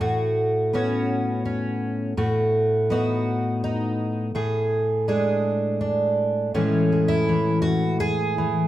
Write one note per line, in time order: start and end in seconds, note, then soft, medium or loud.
0.01 2.16 A2 medium
0.01 0.75 F#4 medium
0.73 2.20 B3 medium
0.73 1.44 C#4 medium
0.73 2.13 F#4 medium
1.45 2.12 C#4 medium
2.17 4.33 A2 medium
2.17 2.89 F#4 medium
2.90 4.29 B3 medium
2.90 3.62 D#4 medium
2.90 4.30 F#4 medium
3.64 4.30 D#4 medium
4.35 6.53 A2 medium
4.35 5.07 G#4 medium
5.08 6.51 G#3 soft
5.08 5.80 D4 medium
5.08 6.51 G#4 medium
5.81 6.50 D4 medium
6.54 8.68 A2 medium
6.54 7.28 E3 soft
6.54 6.91 G#3 soft
6.54 7.83 C#4 medium
6.92 8.68 G#3 soft
7.08 7.61 E4 medium
7.29 8.37 E3 medium
7.62 8.00 F#4 medium
8.00 8.68 G#4 loud
8.38 8.68 E3 medium